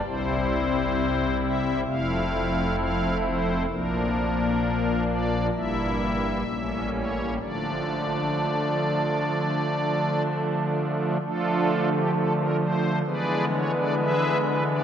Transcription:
X:1
M:4/4
L:1/16
Q:1/4=65
K:Dm
V:1 name="Pipe organ"
c6 e2 f4 f2 c2 | B6 d2 e6 ^c2 | d12 z4 | [DFA]3 G A B c2 [^G=Bd]2 ^c d [GBe]2 B d |]
V:2 name="Pipe organ" clef=bass
[C,,C,G,CE]8 [F,,,F,,A,CE]8 | [B,,,B,,F,B,D]8 [G,,,G,,G,B,E]4 [A,,,A,,G,B,^C]4 | [D,F,A,D]16 | [D,F,A,]8 [D,E,^G,=B,]8 |]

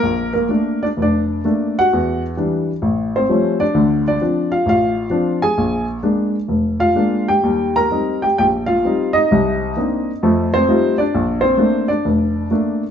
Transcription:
X:1
M:4/4
L:1/8
Q:"Swing" 1/4=131
K:Bb
V:1 name="Grand piano"
[B,B] [B,B]2 [Dd] [Dd]3 [_G_g]- | [_G_g] z4 [^B,^B]2 [Dd]- | [Dd] [Dd]2 [Ff] [Ff]3 [_A_a]- | [_A_a] z4 [Ff]2 [Gg]- |
[Gg] [Bb]2 [Gg] [Gg] [Ff]2 [Ee]- | [Ee]4- [Ee] [Cc]2 [Dd]- | [Dd] [Cc]2 [Dd]4- [Dd] |]
V:2 name="Grand piano"
B,,,2 [A,B,D] z F,,,2 [A,B,D] z | =E,,2 [=E,G,D] z A,,,2 [^E,G,A,^C] z | [D,,D,]2 [F,CD] z A,,,2 [F,CD] z | B,,,2 [_A,B,D] z F,,,2 [A,B,D] z |
[E,,G,]2 [G,CE] z B,,,2 [G,CE] z | [C,,C,]2 [B,CDE] z [F,,A,]2 [G,A,EF] z | B,,,2 [A,B,D] z F,,,2 [A,B,D] z |]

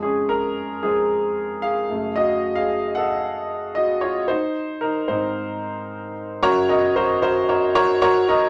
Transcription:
X:1
M:4/4
L:1/16
Q:1/4=113
K:Gblyd
V:1 name="Grand piano"
[DA]2 [DB]4 [CA]6 [Af]4 | [Ge]3 [Af]3 [=Ag]6 [Ge]2 [Fd]2 | [Ec]4 [EB]2 [Ec]8 z2 | [GBd]2 [GBe]2 [GBc]2 [GBc]2 [GBd]2 [GBd]2 [GBd]2 [GBe]2 |]
V:2 name="Grand piano" clef=bass
[F,,F,A,]4 z2 [F,,F,A,]2 z6 [G,,D,=A,]2- | [G,,D,=A,]4 z12 | z6 [A,,E,C]8- [A,,E,C]2 | [G,,D,]16 |]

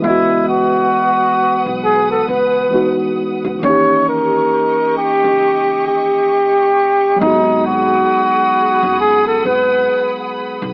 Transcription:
X:1
M:4/4
L:1/16
Q:"Swing 16ths" 1/4=67
K:C#m
V:1 name="String section"
[Bfd']16 | [=Gdc']16 | [Gfbd']16 |]
V:2 name="Flugelhorn"
E2 F6 G A B3 z3 | c2 ^A4 =G4 G6 | D2 F6 G A B3 z3 |]
V:3 name="Tine electric piano"
[E,G,B,Fd]12 [E,G,B,DF]4 | [E,^A,CD=G]16 | [F,G,B,DF]16 |]
V:4 name="Upright bass" clef=bass
C,,4 z3 B,,,3 C,,2 z3 C,, | D,,4 z3 C,,3 D,,2 z4 | G,,,4 z3 F,,,3 G,,,2 z3 B,,, |]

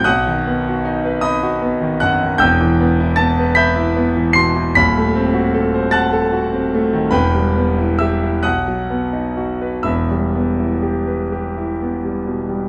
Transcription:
X:1
M:6/8
L:1/16
Q:3/8=50
K:Em
V:1 name="Grand piano"
[f^d'f']6 [^dbd']4 [ff']2 | [ge'g']4 [aa']2 [bg'b']4 [c'c'']2 | [bb']6 [af'a']6 | [Bgb]4 [ee']2 [f^d'f']6 |
[ebe']6 z6 |]
V:2 name="Grand piano"
B,,, ^D, B, F ^D B D F B, D, F,, D, | [E,,,E,,] E, B, E B, B e E B, E, B,, E, | [^D,,,^D,,] A, ^B, F A ^B f A F B, A, ^D, | [E,,,E,,] G, B, E G E B,,, F, B, ^D F B |
[E,,,E,,] G, B, E G B G E B, G, B,, G, |]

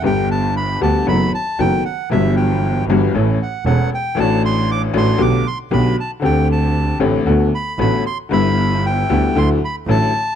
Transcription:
X:1
M:4/4
L:1/8
Q:1/4=116
K:G
V:1 name="Bandoneon"
g a b a b a g f | e g2 z2 f f g | a c' d' c' d' c' b a | g a2 z2 b b c' |
b2 g2 c' b a2 |]
V:2 name="Upright piano" clef=bass
[G,,,G,,D,G,B,G]3 [D,,D,G,B,G] [F,,^D,F,A,B,F] z [F,,D,F,A,B,F] z | [G,,,G,,E,F,G,B,]3 [G,,,G,,E,G,B,F] [A,,,A,,E,A,^CA] z [E,,,E,,E,A,CA] z | [A,,,A,,E,A,DF]3 [A,,,A,,E,A,DF] [B,,,B,,D,A,B,G] z [B,,,B,,D,A,B,G] z | [D,,D,A,CG]3 [A,,,A,,D,A,CG] [D,,D,A,B,F] z [A,,,A,,D,A,B,F] z |
[G,,,G,,D,G,B,E]3 [D,,D,G,B,E] [D,,D,F,A,E] z [A,,,A,,D,F,A,E] z |]
V:3 name="Double bass" clef=bass
G,,,3 D,, F,,, z F,,, z | G,,,3 G,,, A,,, z E,,, z | A,,,3 A,,, B,,, z B,,, z | D,,3 A,,, D,, z A,,, z |
G,,,3 D,, D,, z A,,, z |]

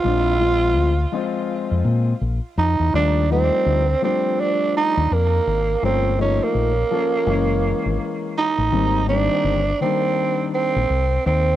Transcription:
X:1
M:4/4
L:1/16
Q:"Swing 16ths" 1/4=83
K:Eb
V:1 name="Tenor saxophone"
F6- F z6 z E2 | D2 C4 C2 D2 E2 B,4 | C2 _D B,8- B,2 z E2- | E2 D4 C4 C4 C2 |]
V:2 name="Grand piano"
[F,A,CD]2 [F,A,CF]2 z2 [F,A,CF]6 z4 | [F,G,=A,D]2 [F,G,A,E]2 z2 [F,G,A,D]6 z4 | [F,=A,B,_D]2 [F,A,B,E]2 z2 [F,B,D=A]2 [=E,^G,^A,^C]6 z2 | [E,G,B,C]2 [E,G,B,C]2 z2 [E,G,B,D]6 z4 |]
V:3 name="Fingered electric bass" clef=bass
B,,,4 D,,2 z3 F,, B,,2 B,,, z F,, =E,, | E,,4 D,,2 z4 z E,, F,,2 A,,,2 | G,,,4 B,,,2 z2 ^F,,,3 ^G,,, z3 =A,,, | A,,,4 G,,,2 z4 z B,,, C,,2 E,,2 |]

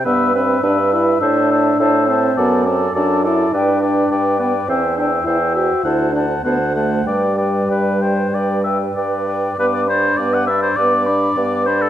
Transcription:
X:1
M:4/4
L:1/16
Q:1/4=102
K:G
V:1 name="Flute"
b2 b2 b2 b2 a2 a2 a2 a2 | a2 a2 a2 a2 g2 g2 g2 g2 | g2 g2 g2 g2 a2 a2 a2 a2 | g2 g2 g2 g2 g2 g2 g2 g2 |
d'2 b2 d'2 b2 d'2 b2 d'2 b2 |]
V:2 name="Oboe"
e2 e2 e2 e2 e2 e2 e2 e2 | d2 d2 d2 d2 d2 d2 d2 d2 | e2 e2 e2 e2 f2 f2 f2 f2 | d2 d2 B2 c2 d2 e2 d4 |
B d c2 d f e c d6 c A |]
V:3 name="Clarinet"
B2 B2 B2 B2 c2 c2 c2 c2 | A2 A2 A2 A2 B2 B2 B2 B2 | c2 c2 c2 c2 c2 c2 c2 c2 | B2 B2 B2 B2 B2 B2 B2 B2 |
B2 d2 B2 d2 B2 d2 B2 d2 |]
V:4 name="French horn"
B,2 C2 D2 E2 D6 C2 | B,2 C2 D2 E2 D6 B,2 | C2 D2 E2 F2 E2 D2 B,2 A,2 | G,12 z4 |
B,2 D2 B,2 D2 B,2 D2 B,2 D2 |]
V:5 name="Bassoon" clef=bass
G,,4 G,,4 A,,4 A,,4 | F,,4 F,,4 G,,4 G,,4 | E,,4 E,,4 D,,4 D,,4 | G,,4 G,,4 G,,4 G,,4 |
G,,4 G,,4 G,,4 G,,4 |]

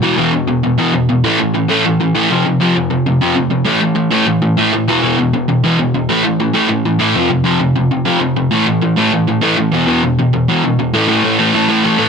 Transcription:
X:1
M:4/4
L:1/8
Q:1/4=198
K:Am
V:1 name="Overdriven electric guitar" clef=bass
[E,,B,,E,] [E,,B,,E,] [E,,B,,] [E,,B,,] [E,,B,,] [E,,B,,E,] [E,,B,,] [E,,B,,] | [A,,E,A,] [A,,E,] [A,,E,] [A,,E,A,] [A,,E,] [A,,E,] [A,,E,A,] [F,,C,F,] | [F,,C,] [F,,C,F,] [F,,C,] [F,,C,] [F,,C,] [F,,C,F,] [F,,C,] [F,,C,] | [A,,E,A,] [A,,E,] [A,,E,] [A,,E,A,] [A,,E,] [A,,E,] [A,,E,A,] [A,,E,] |
[E,,B,,E,] [E,,B,,E,] [E,,B,,] [E,,B,,] [E,,B,,] [E,,B,,E,] [E,,B,,] [E,,B,,] | [A,,E,A,] [A,,E,] [A,,E,] [A,,E,A,] [A,,E,] [A,,E,] [A,,E,A,] [F,,C,F,] | [F,,C,] [F,,C,F,] [F,,C,] [F,,C,] [F,,C,] [F,,C,F,] [F,,C,] [F,,C,] | [A,,E,A,] [A,,E,] [A,,E,] [A,,E,A,] [A,,E,] [A,,E,] [A,,E,A,] [A,,E,] |
[E,,B,,E,] [E,,B,,E,] [E,,B,,] [E,,B,,] [E,,B,,] [E,,B,,E,] [E,,B,,] [E,,B,,] | [K:C] [A,,E,A,] [A,,E,A,] [A,,E,A,] [A,,E,A,] [A,,E,A,] [A,,E,A,] [A,,E,A,] [A,,E,A,] |]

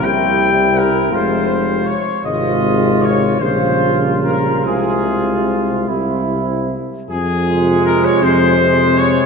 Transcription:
X:1
M:6/8
L:1/16
Q:3/8=52
K:Fm
V:1 name="Trumpet section"
g4 B2 c4 d2 | e4 d2 c4 B2 | A6 z6 | A4 B d c4 d2 |]
V:2 name="Flugelhorn"
=E6 F4 z2 | F6 F6 | F6 =E4 z2 | z2 A,6 A,4 |]
V:3 name="Euphonium" clef=bass
G,6 A,4 z2 | A,6 G,6 | A,6 G,4 z2 | F6 C6 |]
V:4 name="Trombone" clef=bass
C,6 C,4 z2 | C,6 D,6 | C,6 C,4 z2 | z2 C,6 C,4 |]
V:5 name="Tuba" clef=bass
C,,6 F,,,4 z2 | A,,,6 B,,,6 | C,,6 C,,4 z2 | F,,6 F,,6 |]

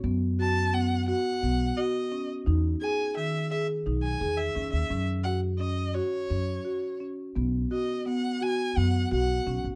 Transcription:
X:1
M:7/8
L:1/16
Q:1/4=86
K:Bmix
V:1 name="Violin"
z2 a2 f2 f4 d3 z | z2 g2 e2 e2 z g2 e2 e- | e z f2 d2 c6 z2 | z2 d2 f2 g2 f2 f3 z |]
V:2 name="Marimba"
B,2 F2 B,2 F2 B,2 F2 C2 | D2 G2 D,2 G2 D2 G2 C2 | C2 F2 C2 F2 C2 F2 C2 | B,2 F2 B,2 F2 B,2 F2 C2 |]
V:3 name="Upright bass" clef=bass
F,,8 B,,,2 z4 | E,,2 z6 B,,,2 E,,2 E,, D,, | F,,8 F,,2 z4 | B,,,2 z6 F,,2 B,,,2 B,,, A,,, |]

